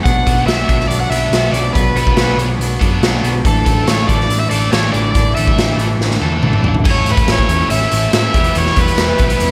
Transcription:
0.04 B1 B2 F#3 B3 F#5, kick, closed hi-hat
0.08 D4
0.26 B1 F#3 B3 D4 F#4, kick, closed hi-hat
0.46 B1 B2 F#3 B3 F#4 E5, snare, closed hi-hat
0.51 D4
0.68 B1 B2 F#3 B3 D4, kick, closed hi-hat
0.80 snare
0.88 B1 B2 F#3 B3 D5, closed hi-hat
0.92 D4
1.00 F#5
1.10 B1 F#3 B3 D4 F#4 E5, closed hi-hat
1.30 B1 B2 F#3 F#4, snare, closed hi-hat
1.35 B3 D4
1.52 B1 F#3 B3 D4 D5, closed hi-hat
1.56 B2
1.73 B1 B2 F#3 B4, kick, closed hi-hat
1.77 B3 D4
1.94 B1 B3 D4 F#4 B4, closed hi-hat
1.98 F#3
2.07 kick
2.15 B1 B2 F#3 B3 F#4, snare, closed hi-hat
2.20 D4
2.37 B1 F#3 B3 D4, closed hi-hat
2.41 B2
2.59 B1 B2 F#3 B3, closed hi-hat
2.64 D4
2.80 F#2 B3 D4 F#4, kick, closed hi-hat
2.84 F#3
3.02 B1 B2 F#3 B3 F#4, snare, closed hi-hat
3.06 D4
3.23 B1 B2 F#3 B3 D4, closed hi-hat
3.45 A1 A2 D3 E3 A3 D4 A4, kick, closed hi-hat
3.65 A1 E3 A3 D4 A4, kick, closed hi-hat
3.86 A1 D3 E3 A3 D4 A4 C#5, snare, closed hi-hat
4.07 A1 A2 D3 E3 A3 D4 D5, kick, closed hi-hat
4.20 snare
4.29 A1 D3 E3 A3, closed hi-hat
4.33 D4
4.40 E5
4.50 A1 E3 A3 D4 A4 D5, closed hi-hat
4.71 A1 D3 E3 A3 D4 A4 C#5, snare, closed hi-hat
4.91 A1 A2 D3 E3 A3 D4 D5, closed hi-hat
5.12 A1 A2 D3 E3 A3 D5, kick, closed hi-hat
5.17 D4
5.35 A1 E3 A3 D4 A4 E5, closed hi-hat
5.47 kick
5.56 A1 D3 E3 A3 D4 A4, snare, closed hi-hat
5.78 A1 D3 E3 A3 D4, closed hi-hat
5.82 A2
5.99 A1 D3 E3, snare
6.03 A3 D4
6.11 snare
6.21 E2 E3 A3 D4 A4, high tom
6.32 high tom
6.43 A1 D3 E3 A3 D4 A4, mid tom
6.53 mid tom
6.62 A1 A3 D4, floor tom
6.66 A2 D3 E3
6.74 floor tom
6.83 A1 A2 C#4 E4 C#5 E5 A5 E6, kick, crash
6.88 A4 C#5
7.05 A1 A3, closed hi-hat
7.11 B4
7.17 kick, closed hi-hat
7.27 A1 E4, snare, closed hi-hat
7.32 C#5
7.38 kick
7.49 E2 C#4, closed hi-hat
7.70 A1 E3 E5, closed hi-hat
7.91 A1 A3, closed hi-hat
8.13 A2 C#4 E5, snare, closed hi-hat
8.33 E1 E3 G3 B3 E4 G4 G5, kick, closed hi-hat
8.38 B4
8.44 closed hi-hat
8.55 E1 E3 C#5, closed hi-hat
8.66 snare
8.76 E1 G3 B4, kick, closed hi-hat
8.88 closed hi-hat
8.97 E1 E4, snare, closed hi-hat
9.18 B1 B3, kick, closed hi-hat
9.30 closed hi-hat
9.40 E1 E3, closed hi-hat

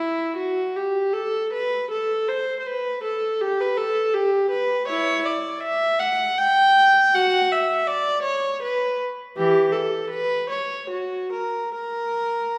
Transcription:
Already playing: E4
0.37 F#4
0.76 G4
1.14 A4
1.53 B4
1.91 A4
2.29 C5
2.59 C5
2.66 B4
3.03 A4
3.41 G4
3.61 B4
3.77 A4
4.14 G4
4.50 B4
4.88 E4 C#5
5.25 D5
5.63 E5
6.00 F#5
6.38 G5
7.14 F#4 F#5
7.52 E5
7.87 D5
8.22 C#5
8.63 B4
9.37 E3 G4
9.72 A4
10.10 B4
10.50 C#5
10.90 F#4
11.32 A#4
11.74 A#4

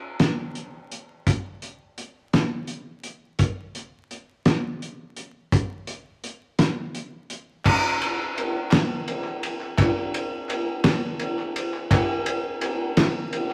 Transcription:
0.20 snare, closed hi-hat
0.55 closed hi-hat
0.91 closed hi-hat
1.27 kick, closed hi-hat
1.62 closed hi-hat
1.98 closed hi-hat
2.33 snare, closed hi-hat
2.67 closed hi-hat
3.03 closed hi-hat
3.39 kick, closed hi-hat
3.75 closed hi-hat
4.11 closed hi-hat
4.45 snare, closed hi-hat
4.82 closed hi-hat
5.17 closed hi-hat
5.52 kick, closed hi-hat
5.87 closed hi-hat
6.24 closed hi-hat
6.59 snare, closed hi-hat
6.95 closed hi-hat
7.30 closed hi-hat
7.65 kick, clap, crash
8.02 ride
8.36 clap, ride
8.71 snare, clap, ride
9.08 ride
9.24 clap
9.43 ride
9.61 clap
9.78 kick, clap, ride
10.14 ride
10.49 clap, ride
10.84 snare, clap, ride
11.19 ride
11.39 clap
11.56 ride
11.74 clap
11.91 kick, clap, ride
12.26 ride
12.61 clap, ride
12.97 snare, clap, ride
13.33 ride

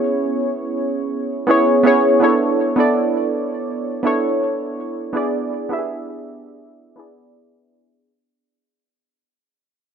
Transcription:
Already playing: B3 C#4 E4 G#4 C#5
1.47 B3 C#4 E4 G#4 C#5
1.83 B3 C#4 E4 G#4 C#5
2.20 B3 D4 E4 A4 C#5
2.76 B3 D4 E4 A4
2.80 D5
4.03 B3 D4 E4 A4 C#5
5.13 B3 D4 E4 G#4 D5
5.69 B3 D4 E4 G4 E5
5.79 G#4
6.96 B3 D4 E4 G#4 D5

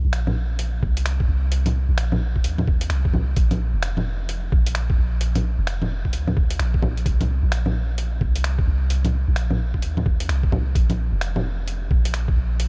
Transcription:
0.04 A#1
0.13 finger snap, closed hi-hat
0.27 low bongo
0.59 closed hi-hat
0.82 C2, kick
0.97 closed hi-hat
1.06 finger snap, closed hi-hat
1.20 kick
1.28 C2
1.52 closed hi-hat
1.66 closed hi-hat, low bongo
1.88 A#1
1.98 finger snap, closed hi-hat
2.12 low bongo
2.36 kick
2.43 D#2, closed hi-hat
2.58 low bongo
2.68 kick
2.81 closed hi-hat
2.89 C2, finger snap, closed hi-hat
3.05 kick
3.12 C2, low bongo
3.36 A#1, kick, closed hi-hat
3.51 closed hi-hat, low bongo
3.73 F1
3.83 finger snap, closed hi-hat
3.97 low bongo
4.29 closed hi-hat
4.52 A#1, kick
4.66 closed hi-hat
4.75 finger snap, closed hi-hat
4.90 kick
4.98 A#1
5.21 closed hi-hat
5.35 closed hi-hat, low bongo
5.58 F1
5.67 finger snap, closed hi-hat
5.82 low bongo
6.05 kick
6.13 D2, closed hi-hat
6.27 low bongo
6.37 kick
6.50 closed hi-hat
6.59 A#1, finger snap, closed hi-hat
6.74 kick
6.82 A#1, low bongo
6.97 closed hi-hat
7.06 C2, kick, closed hi-hat
7.21 closed hi-hat, low bongo
7.43 A#1
7.52 finger snap, closed hi-hat
7.66 low bongo
7.98 closed hi-hat
8.21 C2, kick
8.36 closed hi-hat
8.44 finger snap, closed hi-hat
8.59 kick
8.67 C2
8.90 closed hi-hat
9.05 closed hi-hat, low bongo
9.28 A#1
9.36 finger snap, closed hi-hat
9.50 low bongo
9.74 kick
9.82 D#2, closed hi-hat
9.97 low bongo
10.06 kick
10.20 closed hi-hat
10.29 C2, finger snap, closed hi-hat
10.43 kick
10.52 C2, low bongo
10.75 A#1, kick, closed hi-hat
10.90 closed hi-hat, low bongo
11.12 F1
11.21 finger snap, closed hi-hat
11.36 low bongo
11.68 closed hi-hat
11.91 A#1, kick
12.05 closed hi-hat
12.14 finger snap, closed hi-hat
12.28 kick
12.36 A#1
12.60 closed hi-hat

